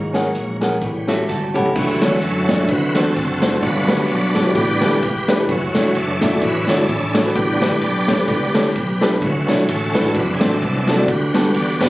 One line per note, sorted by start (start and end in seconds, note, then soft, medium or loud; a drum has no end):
0.00 0.28 G#1 medium
0.00 0.57 G#2 medium
0.00 0.57 F#3 soft
0.00 0.57 A#3 soft
0.00 0.58 C#4 soft
0.14 0.27 C#4 medium
0.14 0.28 G#4 medium
0.14 0.28 A#4 medium
0.14 0.28 F#5 medium
0.14 snare medium
0.14 closed hi-hat medium
0.34 0.75 A#1 medium
0.34 closed hi-hat medium
0.61 0.74 C#4 medium
0.61 0.75 G#4 medium
0.61 0.75 A#4 medium
0.61 0.75 F#5 medium
0.61 snare medium
0.61 closed hi-hat medium
0.82 1.22 A1 medium
0.82 1.51 A2 medium
0.82 1.51 G3 medium
0.82 1.51 B3 soft
0.82 1.52 C#4 medium
0.82 kick loud
0.82 closed hi-hat medium
1.07 1.21 C#4 medium
1.07 1.28 F#4 medium
1.07 1.21 G4 medium
1.07 1.22 A4 medium
1.07 1.22 E5 medium
1.07 snare loud
1.07 closed hi-hat medium
1.29 1.51 G1 medium
1.29 1.54 F#4 medium
1.29 1.54 A4 medium
1.29 kick medium
1.29 snare soft
1.54 1.72 C#2 medium
1.54 1.68 C#4 medium
1.54 1.99 E4 soft
1.54 1.99 G4 medium
1.54 1.68 G4 medium
1.54 1.68 A4 medium
1.54 1.69 F#5 medium
1.54 mid tom medium
1.65 floor tom medium
1.75 1.98 D2 medium
1.75 2.45 D3 medium
1.75 2.65 E3 medium
1.75 2.65 F#3 medium
1.75 2.65 A3 medium
1.75 2.23 C#4 medium
1.75 2.22 F#4 medium
1.75 kick loud
1.75 crash loud
2.02 2.20 E2 medium
2.02 2.15 A3 medium
2.02 2.15 C#4 medium
2.02 2.15 D4 medium
2.02 2.16 F#4 medium
2.02 2.16 C#5 medium
2.02 snare loud
2.02 ride bell medium
2.22 2.69 F#2 medium
2.22 2.67 C#4 medium
2.22 2.66 F#4 medium
2.22 2.71 A4 medium
2.22 ride bell medium
2.48 2.55 A3 medium
2.48 2.55 C#4 medium
2.48 2.55 D4 medium
2.48 2.55 F#4 medium
2.48 2.56 D5 medium
2.48 kick medium
2.48 snare loud
2.48 ride bell medium
2.59 2.69 A3 medium
2.59 2.69 C#4 medium
2.59 2.69 D4 medium
2.59 2.70 F#4 medium
2.59 2.70 E5 medium
2.69 2.91 D2 loud
2.69 3.38 D3 medium
2.69 3.02 E3 medium
2.69 3.02 F#3 medium
2.69 2.95 C4 medium
2.69 2.95 F#4 medium
2.69 2.97 B4 loud
2.69 kick loud
2.69 ride bell medium
2.95 3.13 E2 loud
2.95 3.08 A3 medium
2.95 3.59 C4 medium
2.95 3.09 C4 medium
2.95 3.09 D4 medium
2.95 3.59 F#4 medium
2.95 3.09 F#4 medium
2.95 3.65 A4 loud
2.95 3.09 C5 medium
2.95 snare loud
2.95 ride bell medium
3.16 3.56 F#1 medium
3.16 kick medium
3.16 ride bell medium
3.42 3.48 A3 medium
3.42 3.49 C4 medium
3.42 3.49 D4 medium
3.42 3.49 F#4 medium
3.42 3.49 C5 medium
3.42 snare loud
3.42 ride bell soft
3.52 3.62 A3 medium
3.52 3.62 C4 medium
3.52 3.63 D4 medium
3.52 3.63 F#4 medium
3.52 3.63 C5 medium
3.62 3.85 G1 loud
3.62 4.31 G2 medium
3.62 4.31 F#3 medium
3.62 4.31 A3 medium
3.62 4.32 B3 medium
3.62 4.31 C#4 medium
3.62 4.52 D4 medium
3.62 4.08 F#4 medium
3.62 4.06 B4 loud
3.62 kick loud
3.62 ride bell medium
3.88 4.06 D2 medium
3.88 4.02 A3 medium
3.88 4.02 C#4 medium
3.88 4.02 F#4 medium
3.88 4.02 G4 medium
3.88 4.02 B4 medium
3.88 snare loud
3.88 ride bell medium
4.08 4.49 B1 medium
4.08 4.52 F#4 medium
4.08 4.53 B4 medium
4.08 4.56 D5 loud
4.08 ride bell medium
4.35 4.41 A3 medium
4.35 4.42 C#4 medium
4.35 4.42 F#4 medium
4.35 4.42 G4 medium
4.35 4.42 A4 medium
4.35 kick medium
4.35 snare loud
4.35 ride bell medium
4.45 4.55 A3 medium
4.45 4.56 C#4 medium
4.45 4.56 F#4 medium
4.45 4.56 G4 medium
4.45 4.56 B4 medium
4.55 4.77 A1 loud
4.55 5.25 A2 medium
4.55 4.88 D3 medium
4.55 4.89 G3 medium
4.55 4.89 B3 medium
4.55 5.45 G4 medium
4.55 5.46 B4 medium
4.55 5.00 D5 loud
4.55 kick loud
4.55 ride bell medium
4.81 4.99 G1 medium
4.81 4.95 A3 medium
4.81 4.95 D4 medium
4.81 4.95 E4 medium
4.81 4.95 G4 medium
4.81 4.96 B4 medium
4.81 snare loud
4.81 ride bell medium
5.02 5.42 E1 loud
5.02 kick medium
5.02 ride bell medium
5.28 5.35 A3 medium
5.28 5.35 D4 medium
5.28 5.35 E4 medium
5.28 5.36 G4 medium
5.28 5.36 B4 loud
5.28 snare loud
5.28 ride bell soft
5.39 5.49 A3 medium
5.39 5.49 D4 medium
5.39 5.49 E4 medium
5.39 5.50 G4 medium
5.39 5.50 B4 medium
5.48 5.71 F#1 loud
5.48 6.18 E3 medium
5.48 6.18 F#3 medium
5.48 6.39 A3 medium
5.48 5.96 C#4 medium
5.48 5.98 F#4 medium
5.48 kick loud
5.48 ride bell medium
5.75 5.92 E1 medium
5.75 5.88 A3 medium
5.75 5.88 D4 medium
5.75 5.89 E4 medium
5.75 5.89 F#4 medium
5.75 5.89 C#5 medium
5.75 snare loud
5.75 ride bell medium
5.95 6.35 F#1 medium
5.95 6.42 C#4 medium
5.95 6.42 D4 medium
5.95 6.44 A4 loud
5.95 ride bell medium
6.21 6.28 A3 medium
6.21 6.28 D4 medium
6.21 6.29 E4 medium
6.21 6.29 F#4 medium
6.21 6.29 E5 medium
6.21 kick medium
6.21 snare loud
6.21 ride bell medium
6.32 6.46 A3 medium
6.32 6.46 D4 medium
6.32 6.46 E4 medium
6.32 6.47 F#4 medium
6.32 6.47 E5 medium
6.41 6.64 A1 loud
6.41 6.65 E3 medium
6.41 6.66 F#3 soft
6.41 6.66 C#4 medium
6.41 6.68 D4 medium
6.41 7.32 E4 medium
6.41 6.67 B4 loud
6.41 kick loud
6.41 ride bell medium
6.67 6.86 G1 loud
6.67 6.81 A3 medium
6.67 7.31 C#4 medium
6.67 6.81 D4 medium
6.67 7.32 D4 medium
6.67 6.82 E4 medium
6.67 6.82 F#4 medium
6.67 7.38 A4 loud
6.67 6.82 C#5 medium
6.67 snare loud
6.67 ride bell medium
6.89 7.29 A1 loud
6.89 kick medium
6.89 ride bell medium
7.14 7.21 A3 medium
7.14 7.21 D4 medium
7.14 7.22 E4 medium
7.14 7.22 F#4 medium
7.14 7.22 C#5 medium
7.14 snare loud
7.14 ride bell medium
7.25 7.35 A3 medium
7.25 7.35 D4 medium
7.25 7.36 E4 medium
7.25 7.36 F#4 medium
7.25 7.36 B4 medium
7.34 7.63 A1 loud
7.34 8.04 A2 medium
7.34 7.67 D3 medium
7.34 7.67 G3 medium
7.34 7.68 B3 medium
7.34 8.24 D4 medium
7.34 7.80 G4 medium
7.34 7.81 B4 loud
7.34 kick loud
7.34 ride bell medium
7.61 7.79 G1 loud
7.61 7.74 A3 medium
7.61 7.74 D4 medium
7.61 7.75 E4 medium
7.61 7.75 G4 medium
7.61 7.75 B4 medium
7.61 snare loud
7.61 ride bell medium
7.81 8.22 B1 medium
7.81 8.28 G4 medium
7.81 8.28 B4 medium
7.81 8.27 D5 loud
7.81 ride bell medium
8.07 8.14 A3 medium
8.07 8.15 D4 medium
8.07 8.15 E4 medium
8.07 8.15 G4 medium
8.07 8.15 C#5 medium
8.07 kick medium
8.07 snare loud
8.07 ride bell medium
8.18 8.32 A3 medium
8.18 8.32 D4 medium
8.18 8.33 E4 medium
8.18 8.33 G4 medium
8.18 8.33 B4 medium
8.28 8.50 C#2 loud
8.28 8.52 D3 medium
8.28 8.52 G3 soft
8.28 8.52 B3 medium
8.28 9.18 G4 medium
8.28 9.18 B4 medium
8.28 8.72 D5 loud
8.28 kick loud
8.28 ride bell medium
8.54 8.72 D2 medium
8.54 8.68 A3 medium
8.54 8.68 D4 medium
8.54 8.68 E4 medium
8.54 8.68 G4 medium
8.54 8.69 C#5 medium
8.54 snare loud
8.54 ride bell medium
8.76 9.22 B1 medium
8.76 kick medium
8.76 ride bell medium
9.01 9.08 A3 medium
9.01 9.08 D4 medium
9.01 9.08 E4 medium
9.01 9.08 G4 medium
9.01 9.09 B4 loud
9.01 snare loud
9.01 ride bell medium
9.12 9.22 A3 medium
9.12 9.22 D4 medium
9.12 9.22 E4 medium
9.12 9.22 G4 medium
9.12 9.23 B4 medium
9.21 9.48 D2 medium
9.21 9.91 D3 medium
9.21 9.54 E3 medium
9.21 9.54 F#3 soft
9.21 10.11 A3 medium
9.21 9.55 C#4 medium
9.21 9.68 F#4 medium
9.21 kick loud
9.21 ride bell medium
9.47 9.65 B1 medium
9.47 9.61 A3 medium
9.47 9.61 D4 medium
9.47 9.61 E4 medium
9.47 9.61 F#4 medium
9.47 9.62 C#5 medium
9.47 snare loud
9.47 ride bell medium
9.68 10.08 A1 medium
9.68 10.12 C#4 medium
9.68 10.12 F#4 medium
9.68 10.16 A4 loud
9.68 ride bell medium
9.93 10.00 A3 medium
9.93 10.01 D4 medium
9.93 10.01 E4 medium
9.93 10.01 F#4 medium
9.93 10.01 B4 medium
9.93 kick medium
9.93 snare loud
9.93 ride bell medium
10.04 10.14 A3 medium
10.04 10.15 D4 medium
10.04 10.15 E4 medium
10.04 10.15 F#4 medium
10.04 10.15 A4 medium
10.14 10.37 F#1 loud
10.14 11.04 E3 medium
10.14 11.04 F#3 medium
10.14 10.41 C4 medium
10.14 10.41 D4 medium
10.14 10.34 B4 loud
10.14 kick loud
10.14 ride bell medium
10.34 10.41 G#4 medium
10.40 10.59 A1 loud
10.40 10.54 A3 medium
10.40 10.54 C4 medium
10.40 11.04 C4 medium
10.40 10.54 D4 medium
10.40 11.04 D4 medium
10.40 10.54 F#4 medium
10.40 11.10 A4 loud
10.40 10.54 C5 medium
10.40 snare loud
10.40 ride bell medium
10.62 11.01 C2 loud
10.62 kick loud
10.62 ride bell medium
10.87 10.94 A3 medium
10.87 10.94 C4 medium
10.87 10.94 D4 medium
10.87 10.95 F#4 medium
10.87 10.95 A4 medium
10.87 snare loud
10.87 ride bell medium
10.98 11.08 A3 medium
10.98 11.08 C4 medium
10.98 11.08 D4 medium
10.98 11.09 F#4 medium
10.98 11.09 D5 medium
11.08 11.30 D2 loud
11.08 11.77 D3 medium
11.08 11.55 F#4 medium
11.08 11.89 G4 medium
11.08 11.52 B4 loud
11.08 kick loud
11.08 ride bell medium
11.33 11.52 G2 medium
11.33 11.47 G3 medium
11.33 11.47 B3 medium
11.33 11.47 D4 medium
11.33 11.48 F#4 medium
11.33 11.48 A4 medium
11.33 snare loud
11.33 ride bell medium
11.54 11.89 E2 medium
11.54 11.89 F#4 medium
11.54 11.89 B4 medium
11.54 11.89 D5 loud
11.54 ride bell medium
11.80 11.89 F#3 medium
11.80 11.87 G3 medium
11.80 11.89 A3 medium
11.80 11.87 B3 medium
11.80 11.89 B3 medium
11.80 11.87 D4 medium
11.80 11.88 F#4 medium
11.80 11.88 B4 medium
11.80 kick medium
11.80 snare loud
11.80 ride bell medium